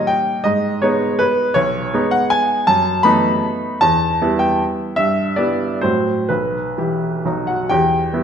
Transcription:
0.00 0.41 G3 soft
0.00 0.41 A#3 soft
0.00 0.41 D#4 soft
0.00 0.10 C#5 medium
0.00 0.11 D#5 medium
0.07 0.45 G5 medium
0.44 0.82 G#2 soft
0.44 0.82 D#5 medium
0.82 1.52 G#3 soft
0.82 1.52 B3 soft
0.82 1.52 D#4 soft
0.82 1.20 C#5 medium
1.19 1.55 B4 medium
1.54 1.92 B1 medium
1.54 2.12 C#5 medium
1.94 2.64 G#3 soft
1.94 2.64 B3 soft
1.94 2.64 D#4 soft
2.11 2.31 F#5 medium
2.30 2.67 G#5 medium
2.67 3.03 F#2 medium
2.67 3.04 A5 medium
3.03 3.77 A3 soft
3.03 3.77 B3 soft
3.03 3.77 D#4 medium
3.03 3.80 B5 medium
3.81 4.20 E2 medium
3.81 4.41 A5 medium
4.21 4.94 G3 soft
4.21 4.94 B3 soft
4.21 4.94 E4 soft
4.39 4.59 G5 medium
4.96 5.36 G2 soft
4.96 5.36 E5 medium
5.36 5.78 G3 soft
5.36 5.79 B3 soft
5.36 5.79 E4 soft
5.36 5.82 D5 medium
5.81 6.28 A2 soft
5.81 6.25 F#3 soft
5.81 6.25 C4 soft
5.81 6.26 F#4 soft
5.81 6.28 C5 medium
6.29 6.77 B1 soft
6.29 7.25 B4 soft
6.78 7.22 E3 soft
6.78 7.22 E4 soft
6.78 7.22 G4 soft
7.25 7.69 B1 soft
7.25 7.67 F#3 soft
7.25 7.67 D#4 soft
7.25 7.47 F#4 soft
7.47 7.69 F#4 soft
7.47 7.70 F#5 medium
7.69 8.11 E2 soft
7.69 8.23 G4 medium
7.69 8.23 G5 medium
8.13 8.23 G3 soft
8.13 8.23 B3 soft
8.13 8.23 E4 soft

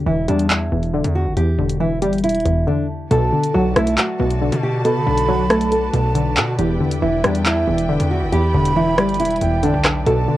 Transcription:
0.00 0.70 E2 loud
0.00 0.92 D3 medium
0.06 0.27 E1 loud
0.06 1.15 E3 medium
0.06 0.25 E4 medium
0.28 0.70 E2 loud
0.28 1.37 G3 medium
0.28 0.47 D4 medium
0.28 closed hi-hat medium
0.39 closed hi-hat medium
0.50 1.11 E4 medium
0.50 clap loud
0.50 closed hi-hat medium
0.72 1.03 E1 loud
0.72 1.36 E2 medium
0.83 closed hi-hat medium
0.93 1.57 D3 medium
1.04 1.28 E2 loud
1.04 closed hi-hat medium
1.15 1.34 F#4 medium
1.26 1.36 F#1 loud
1.37 2.44 E2 loud
1.37 1.78 G4 loud
1.37 closed hi-hat medium
1.59 2.04 E1 loud
1.59 2.66 D3 medium
1.70 closed hi-hat medium
1.80 2.89 E3 medium
1.80 1.99 E4 medium
2.02 2.25 G1 loud
2.02 3.11 G3 medium
2.02 2.21 G4 medium
2.02 closed hi-hat medium
2.13 closed hi-hat medium
2.18 closed hi-hat medium
2.24 2.44 E1 medium
2.24 2.65 E4 medium
2.24 closed hi-hat medium
2.29 closed hi-hat medium
2.35 closed hi-hat medium
2.40 closed hi-hat soft
2.46 2.66 E1 loud
2.46 3.11 E2 medium
2.46 closed hi-hat medium
2.67 3.11 D3 medium
2.67 2.86 D4 medium
3.11 3.32 B1 loud
3.11 4.18 B2 loud
3.11 6.55 F#4 medium
3.11 3.52 A4 loud
3.11 10.37 B4 medium
3.11 10.37 D5 medium
3.11 6.55 A5 medium
3.11 closed hi-hat medium
3.33 4.40 D3 medium
3.43 closed hi-hat loud
3.54 3.75 B1 loud
3.54 4.63 F#3 medium
3.54 3.73 F#4 medium
3.76 3.97 B1 loud
3.76 4.85 A3 medium
3.76 3.95 E4 medium
3.76 cross-stick loud
3.76 closed hi-hat medium
3.87 closed hi-hat medium
3.98 4.59 F#4 medium
3.98 clap loud
3.98 closed hi-hat medium
4.20 4.51 B1 loud
4.20 4.84 B2 medium
4.30 closed hi-hat medium
4.41 5.05 D3 medium
4.52 4.97 B2 loud
4.52 closed hi-hat medium
4.63 4.82 G4 medium
4.85 5.92 B2 medium
4.85 5.26 A4 medium
4.85 5.89 B5 loud
4.85 closed hi-hat medium
4.96 5.06 D3 loud
5.07 5.90 B1 loud
5.07 6.14 D3 medium
5.17 closed hi-hat loud
5.28 6.37 F#3 medium
5.28 5.47 F#4 loud
5.50 6.59 A3 medium
5.50 5.69 A4 medium
5.50 cross-stick loud
5.50 closed hi-hat medium
5.61 closed hi-hat medium
5.72 6.33 A4 medium
5.72 closed hi-hat medium
5.93 6.38 B1 loud
5.93 6.59 B2 medium
5.93 6.55 A5 loud
5.93 closed hi-hat medium
6.15 6.59 D3 medium
6.15 closed hi-hat medium
6.37 6.58 B2 loud
6.37 6.56 F#4 medium
6.37 clap loud
6.37 closed hi-hat medium
6.58 6.79 E1 loud
6.58 7.66 E2 loud
6.58 10.03 E4 medium
6.58 7.00 G4 medium
6.58 10.03 G5 medium
6.58 closed hi-hat medium
6.80 7.88 D3 medium
6.91 closed hi-hat loud
7.02 7.23 E1 loud
7.02 8.11 E3 medium
7.02 7.21 E4 medium
7.24 7.66 E2 loud
7.24 8.32 G3 medium
7.24 7.42 D4 medium
7.24 cross-stick loud
7.24 closed hi-hat medium
7.35 closed hi-hat medium
7.46 8.07 E4 medium
7.46 clap loud
7.46 closed hi-hat medium
7.67 7.99 E1 loud
7.67 8.31 E2 medium
7.78 closed hi-hat medium
7.89 8.53 D3 medium
8.00 8.23 E2 loud
8.00 closed hi-hat medium
8.11 8.29 F#4 medium
8.22 8.32 F#1 loud
8.32 9.40 E2 loud
8.32 8.73 G4 loud
8.32 9.37 B5 loud
8.32 closed hi-hat medium
8.54 8.99 E1 loud
8.54 9.62 D3 medium
8.65 closed hi-hat medium
8.76 9.85 E3 medium
8.76 8.95 E4 medium
8.97 9.21 G1 loud
8.97 10.06 G3 medium
8.97 9.16 G4 medium
8.97 cross-stick loud
8.97 closed hi-hat medium
9.09 closed hi-hat medium
9.14 closed hi-hat medium
9.19 9.40 E1 loud
9.19 9.60 E4 medium
9.19 closed hi-hat medium
9.25 closed hi-hat medium
9.30 closed hi-hat medium
9.36 closed hi-hat soft
9.41 9.64 E1 loud
9.41 10.06 E2 medium
9.41 10.02 G5 loud
9.41 closed hi-hat medium
9.63 9.73 G1 loud
9.63 10.06 D3 medium
9.63 9.82 D4 medium
9.63 closed hi-hat medium
9.74 10.05 B1 loud
9.85 cross-stick loud
9.85 clap loud
9.85 closed hi-hat medium
10.06 10.27 B1 loud
10.06 10.37 B2 loud
10.06 10.37 F#4 medium
10.06 10.37 A4 loud
10.06 10.37 A5 medium
10.06 closed hi-hat medium
10.28 10.37 D3 medium

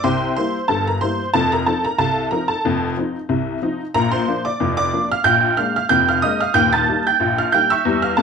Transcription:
0.04 0.32 C2 medium
0.04 0.32 C3 medium
0.04 0.35 C5 medium
0.04 0.35 G5 medium
0.04 0.30 C6 loud
0.36 0.55 G3 soft
0.36 0.55 A#3 medium
0.36 0.56 E4 medium
0.36 0.68 C5 medium
0.36 0.68 C6 loud
0.68 0.97 G1 medium
0.68 0.97 G2 medium
0.68 0.86 A4 medium
0.68 0.86 A5 medium
0.87 1.01 A#4 medium
0.87 1.02 A#5 medium
1.01 1.19 G3 medium
1.01 1.20 A#3 soft
1.01 1.20 E4 medium
1.01 1.32 C5 medium
1.01 1.27 C6 loud
1.34 1.62 F1 medium
1.34 1.62 F2 loud
1.34 1.51 A4 medium
1.34 1.52 A5 loud
1.52 1.67 A#4 medium
1.52 1.67 A#5 medium
1.66 1.84 F3 medium
1.66 1.85 C4 medium
1.66 1.85 D#4 medium
1.66 1.83 A4 medium
1.66 1.84 A5 medium
1.85 1.99 A#4 medium
1.85 1.99 A#5 medium
1.98 2.26 C2 medium
1.98 2.27 C3 medium
1.98 2.30 A4 medium
1.98 2.30 F5 medium
1.98 2.25 A5 loud
2.31 2.50 F3 medium
2.31 2.50 C4 medium
2.31 2.50 D#4 medium
2.31 2.49 A#4 medium
2.31 2.49 A#5 medium
2.48 2.93 A4 medium
2.48 2.87 A5 medium
2.65 2.92 F1 medium
2.65 2.93 F2 loud
2.97 3.15 F3 soft
2.97 3.16 C4 medium
2.97 3.16 D#4 medium
3.29 3.57 C2 medium
3.29 3.57 C3 medium
3.62 3.80 F3 medium
3.62 3.80 C4 medium
3.62 3.81 D#4 medium
3.94 4.22 A#1 medium
3.94 4.22 A#2 medium
3.94 4.11 A#4 medium
3.94 4.12 A#5 loud
4.12 4.43 C5 medium
4.12 4.43 C6 loud
4.28 4.46 F3 medium
4.28 4.46 A#3 medium
4.28 4.46 D4 medium
4.45 4.75 D5 medium
4.45 4.71 D6 medium
4.60 4.88 F1 medium
4.60 4.87 F2 medium
4.77 5.08 D5 medium
4.77 5.08 D6 loud
4.93 5.11 F3 medium
4.93 5.11 A#3 medium
4.93 5.11 D4 medium
5.12 5.25 F5 medium
5.12 5.25 F6 loud
5.24 5.52 A#1 medium
5.24 5.53 A#2 loud
5.24 5.56 G5 medium
5.24 5.55 G6 loud
5.57 5.75 G#3 medium
5.57 5.76 A#3 medium
5.57 5.76 D4 medium
5.57 5.74 F5 medium
5.57 5.75 F6 loud
5.76 5.90 F5 medium
5.76 5.90 F6 loud
5.89 6.18 F1 medium
5.89 6.18 F2 medium
5.89 6.07 G5 medium
5.89 6.07 G6 loud
6.09 6.23 F5 medium
6.09 6.23 F6 loud
6.22 6.41 G#3 medium
6.22 6.41 A#3 medium
6.22 6.41 D4 medium
6.22 6.39 D#5 medium
6.22 6.40 D#6 loud
6.41 6.55 F5 medium
6.41 6.55 F6 loud
6.54 6.82 D#1 medium
6.54 6.82 D#2 loud
6.54 6.71 G5 loud
6.54 6.72 G6 loud
6.73 7.03 A5 medium
6.73 6.99 A6 loud
6.89 7.06 G3 medium
6.89 7.07 A#3 medium
6.89 7.07 D#4 medium
7.07 7.36 G5 medium
7.07 7.37 G6 loud
7.20 7.48 A#1 medium
7.20 7.48 A#2 medium
7.38 7.53 F5 medium
7.38 7.53 F6 loud
7.52 7.71 G3 medium
7.52 7.71 A#3 medium
7.52 7.72 D#4 medium
7.52 7.70 G5 medium
7.52 7.70 G6 loud
7.70 8.01 E5 medium
7.70 8.01 C#6 medium
7.70 8.01 E6 loud
7.85 8.11 E2 loud
7.85 8.12 G3 medium
8.02 8.17 F5 medium
8.02 8.18 F6 loud
8.17 8.22 F2 medium
8.17 8.22 A3 medium
8.17 8.22 A4 medium
8.17 8.22 A5 loud

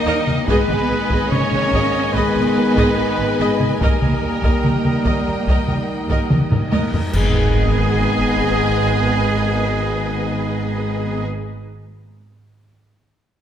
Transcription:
0.00 0.31 D#3 medium
0.00 0.31 G3 medium
0.00 0.44 A#3 loud
0.00 0.47 A#3 medium
0.00 0.43 D#4 medium
0.00 0.44 D#4 loud
0.00 0.47 G4 medium
0.00 0.17 D#5 loud
0.00 0.43 D#5 medium
0.00 0.44 D#5 loud
0.00 0.47 G5 medium
0.06 0.14 D#2 loud
0.06 0.25 A#4 medium
0.06 0.26 D#5 medium
0.27 0.35 D#2 medium
0.27 0.35 A#4 medium
0.27 0.36 D#5 medium
0.27 taiko mid medium
0.46 0.56 G#1 medium
0.46 3.77 D#3 medium
0.46 1.29 G#3 medium
0.46 3.81 G#3 medium
0.46 3.77 G#3 medium
0.46 1.31 B3 loud
0.46 3.76 D#4 medium
0.46 3.80 G#4 medium
0.46 0.68 G#4 loud
0.46 1.29 B4 medium
0.46 1.27 B4 loud
0.46 3.76 D#5 medium
0.46 3.77 D#5 medium
0.46 0.68 D#5 medium
0.46 4.60 G#5 medium
0.46 taiko loud
0.68 0.76 G#1 medium
0.68 0.79 G#4 medium
0.68 0.79 D#5 medium
0.68 taiko mid medium
0.89 0.97 G#1 medium
0.89 1.00 G#4 medium
0.89 1.00 B4 medium
1.10 1.18 G#1 medium
1.10 1.30 G#4 medium
1.10 1.30 D#5 medium
1.10 taiko medium
1.30 1.39 G#1 medium
1.30 2.12 A#3 medium
1.30 2.14 C#4 loud
1.30 1.41 G#4 medium
1.30 2.15 C#5 loud
1.30 2.15 C#5 medium
1.30 1.40 D#5 medium
1.30 taiko mid medium
1.52 1.60 G#1 medium
1.52 1.61 G#4 medium
1.52 1.61 B4 medium
1.52 taiko mid soft
1.72 1.80 G#1 medium
1.72 1.92 G#4 medium
1.72 1.92 D#5 medium
1.72 taiko medium
1.93 2.01 G#1 medium
1.93 2.01 G#4 medium
1.93 2.01 D#5 medium
2.13 2.22 G#1 medium
2.13 3.80 G#3 medium
2.13 3.80 B3 loud
2.13 2.34 G#4 medium
2.13 3.79 B4 medium
2.13 3.77 B4 medium
2.13 2.34 D#5 medium
2.13 taiko medium
2.35 2.44 G#1 medium
2.35 2.44 G#4 medium
2.35 2.43 D#5 medium
2.35 taiko mid soft
2.76 2.85 G#1 medium
2.76 2.95 G#4 medium
2.76 2.95 D#5 medium
2.76 taiko medium
2.97 3.06 G#1 medium
2.97 3.05 G#4 medium
2.97 3.05 D#5 medium
3.18 3.26 G#1 medium
3.18 3.26 G#4 medium
3.18 3.26 B4 medium
3.40 3.48 G#1 medium
3.40 3.59 G#4 medium
3.40 3.59 D#5 medium
3.60 3.68 G#1 medium
3.60 3.68 G#4 medium
3.60 3.68 D#5 medium
3.60 taiko mid soft
3.79 3.88 D#2 medium
3.79 6.78 D#3 medium
3.79 6.26 G3 medium
3.79 7.13 G3 medium
3.79 6.78 G3 medium
3.79 6.26 A#3 medium
3.79 7.10 D#4 medium
3.79 7.13 A#4 medium
3.79 6.26 A#4 medium
3.79 4.00 A#4 medium
3.79 7.09 D#5 medium
3.79 6.90 D#5 medium
3.79 4.01 D#5 medium
3.79 taiko loud
3.79 reverse cymbal medium
4.01 4.10 D#2 medium
4.01 4.09 A#4 soft
4.01 4.10 D#5 soft
4.01 taiko mid medium
4.21 4.29 D#2 medium
4.21 4.31 A#4 soft
4.42 4.50 D#2 medium
4.42 4.63 A#4 medium
4.42 4.63 D#5 medium
4.42 taiko medium
4.63 4.71 D#2 medium
4.63 4.72 A#4 soft
4.63 4.72 D#5 soft
4.63 6.94 G5 medium
4.63 taiko mid medium
4.84 4.92 D#2 medium
4.84 4.94 A#4 medium
4.84 taiko mid medium
5.04 5.12 D#2 medium
5.04 5.25 A#4 medium
5.04 5.25 D#5 medium
5.04 taiko medium
5.26 5.34 D#2 medium
5.26 5.35 A#4 medium
5.26 5.36 D#5 medium
5.47 5.55 D#2 medium
5.47 5.67 A#4 medium
5.47 5.67 D#5 medium
5.47 taiko medium
5.68 5.76 D#2 soft
5.68 5.76 A#4 medium
5.68 5.77 D#5 medium
5.68 taiko mid medium
6.08 6.16 D#2 medium
6.08 6.29 A#4 medium
6.08 6.29 D#5 medium
6.08 taiko medium
6.30 6.38 D#2 medium
6.30 6.38 A#4 medium
6.30 6.38 D#5 soft
6.30 taiko mid medium
6.51 6.59 D#2 medium
6.51 6.59 A#4 medium
6.51 taiko low-mid medium
6.71 6.79 D#2 medium
6.71 6.91 A#4 medium
6.71 6.91 D#5 medium
6.71 taiko high medium
6.92 7.00 D#2 medium
6.92 7.01 A#4 medium
6.92 7.01 D#5 medium
6.92 taiko low loud
7.13 11.23 G#1 medium
7.13 11.22 D#3 medium
7.13 11.22 G#3 medium
7.13 11.23 G#3 medium
7.13 11.22 B3 medium
7.13 11.23 B3 medium
7.13 11.22 D#4 medium
7.13 11.22 G#4 medium
7.13 11.23 G#4 medium
7.13 11.23 B4 medium
7.13 11.23 D#5 medium
7.13 11.23 G#5 medium
7.13 concert bass drum medium
7.13 crash medium
7.13 sub drop medium

